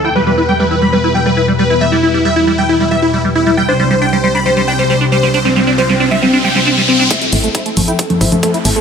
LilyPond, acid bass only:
\new Staff \with { instrumentName = "Acid bass" } { \clef bass \time 4/4 \key a \minor \tempo 4 = 136 e'16 g16 g16 e'16 g16 g16 e'16 g16 g16 e'16 g16 g16 e'16 g16 g16 e'16 | g16 g16 e'16 g16 g16 e'16 g16 g16 e'16 g16 g16 e'16 g16 g16 e'16 g16 | g16 d'16 g16 g16 d'16 g16 g16 d'16 g16 g16 d'16 g16 g16 d'16 g16 g16 | d'16 g16 g16 d'16 g16 g16 d'16 g16 g16 d'16 g16 g16 d'16 g16 g16 d'16 |
a16 e'16 a16 a16 e'16 a16 a16 e'16 a16 a16 e'16 a16 a16 e'16 a16 a16 | }